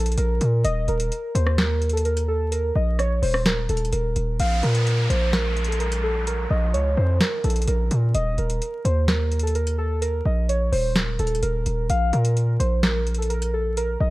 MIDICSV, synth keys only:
0, 0, Header, 1, 2, 480
1, 0, Start_track
1, 0, Tempo, 468750
1, 660, Time_signature, 4, 2, 24, 8
1, 14439, End_track
2, 0, Start_track
2, 0, Title_t, "Synth keys"
2, 0, Program_c, 0, 88
2, 0, Note_on_c, 0, 69, 79
2, 156, Note_off_c, 0, 69, 0
2, 183, Note_on_c, 0, 70, 81
2, 633, Note_off_c, 0, 70, 0
2, 659, Note_on_c, 0, 75, 102
2, 875, Note_off_c, 0, 75, 0
2, 905, Note_on_c, 0, 70, 84
2, 1354, Note_off_c, 0, 70, 0
2, 1383, Note_on_c, 0, 72, 85
2, 1597, Note_off_c, 0, 72, 0
2, 1620, Note_on_c, 0, 70, 77
2, 1958, Note_off_c, 0, 70, 0
2, 1978, Note_on_c, 0, 69, 75
2, 2087, Note_off_c, 0, 69, 0
2, 2102, Note_on_c, 0, 70, 86
2, 2316, Note_off_c, 0, 70, 0
2, 2337, Note_on_c, 0, 69, 93
2, 2554, Note_off_c, 0, 69, 0
2, 2575, Note_on_c, 0, 70, 90
2, 2793, Note_off_c, 0, 70, 0
2, 2823, Note_on_c, 0, 75, 85
2, 3037, Note_off_c, 0, 75, 0
2, 3062, Note_on_c, 0, 73, 89
2, 3277, Note_off_c, 0, 73, 0
2, 3299, Note_on_c, 0, 72, 91
2, 3515, Note_off_c, 0, 72, 0
2, 3542, Note_on_c, 0, 70, 81
2, 3757, Note_off_c, 0, 70, 0
2, 3783, Note_on_c, 0, 69, 84
2, 3997, Note_off_c, 0, 69, 0
2, 4019, Note_on_c, 0, 70, 80
2, 4471, Note_off_c, 0, 70, 0
2, 4503, Note_on_c, 0, 77, 98
2, 4717, Note_off_c, 0, 77, 0
2, 4741, Note_on_c, 0, 70, 85
2, 5192, Note_off_c, 0, 70, 0
2, 5218, Note_on_c, 0, 72, 78
2, 5435, Note_off_c, 0, 72, 0
2, 5458, Note_on_c, 0, 70, 83
2, 5798, Note_off_c, 0, 70, 0
2, 5820, Note_on_c, 0, 69, 78
2, 5928, Note_off_c, 0, 69, 0
2, 5935, Note_on_c, 0, 70, 88
2, 6153, Note_off_c, 0, 70, 0
2, 6179, Note_on_c, 0, 69, 87
2, 6395, Note_off_c, 0, 69, 0
2, 6422, Note_on_c, 0, 70, 91
2, 6637, Note_off_c, 0, 70, 0
2, 6660, Note_on_c, 0, 75, 87
2, 6876, Note_off_c, 0, 75, 0
2, 6898, Note_on_c, 0, 73, 92
2, 7114, Note_off_c, 0, 73, 0
2, 7137, Note_on_c, 0, 72, 89
2, 7354, Note_off_c, 0, 72, 0
2, 7382, Note_on_c, 0, 70, 83
2, 7597, Note_off_c, 0, 70, 0
2, 7621, Note_on_c, 0, 69, 78
2, 7836, Note_off_c, 0, 69, 0
2, 7863, Note_on_c, 0, 70, 77
2, 8313, Note_off_c, 0, 70, 0
2, 8339, Note_on_c, 0, 75, 99
2, 8555, Note_off_c, 0, 75, 0
2, 8585, Note_on_c, 0, 70, 80
2, 9034, Note_off_c, 0, 70, 0
2, 9063, Note_on_c, 0, 72, 81
2, 9277, Note_off_c, 0, 72, 0
2, 9299, Note_on_c, 0, 70, 77
2, 9638, Note_off_c, 0, 70, 0
2, 9658, Note_on_c, 0, 69, 75
2, 9767, Note_off_c, 0, 69, 0
2, 9782, Note_on_c, 0, 70, 86
2, 9996, Note_off_c, 0, 70, 0
2, 10017, Note_on_c, 0, 69, 94
2, 10234, Note_off_c, 0, 69, 0
2, 10255, Note_on_c, 0, 70, 90
2, 10473, Note_off_c, 0, 70, 0
2, 10503, Note_on_c, 0, 75, 84
2, 10717, Note_off_c, 0, 75, 0
2, 10742, Note_on_c, 0, 73, 85
2, 10957, Note_off_c, 0, 73, 0
2, 10979, Note_on_c, 0, 72, 88
2, 11195, Note_off_c, 0, 72, 0
2, 11222, Note_on_c, 0, 70, 81
2, 11437, Note_off_c, 0, 70, 0
2, 11463, Note_on_c, 0, 69, 83
2, 11677, Note_off_c, 0, 69, 0
2, 11700, Note_on_c, 0, 70, 78
2, 12151, Note_off_c, 0, 70, 0
2, 12183, Note_on_c, 0, 77, 102
2, 12397, Note_off_c, 0, 77, 0
2, 12421, Note_on_c, 0, 70, 86
2, 12872, Note_off_c, 0, 70, 0
2, 12898, Note_on_c, 0, 72, 79
2, 13115, Note_off_c, 0, 72, 0
2, 13138, Note_on_c, 0, 70, 79
2, 13477, Note_off_c, 0, 70, 0
2, 13500, Note_on_c, 0, 69, 75
2, 13608, Note_off_c, 0, 69, 0
2, 13616, Note_on_c, 0, 70, 85
2, 13833, Note_off_c, 0, 70, 0
2, 13860, Note_on_c, 0, 69, 88
2, 14075, Note_off_c, 0, 69, 0
2, 14102, Note_on_c, 0, 70, 92
2, 14317, Note_off_c, 0, 70, 0
2, 14339, Note_on_c, 0, 75, 89
2, 14439, Note_off_c, 0, 75, 0
2, 14439, End_track
0, 0, End_of_file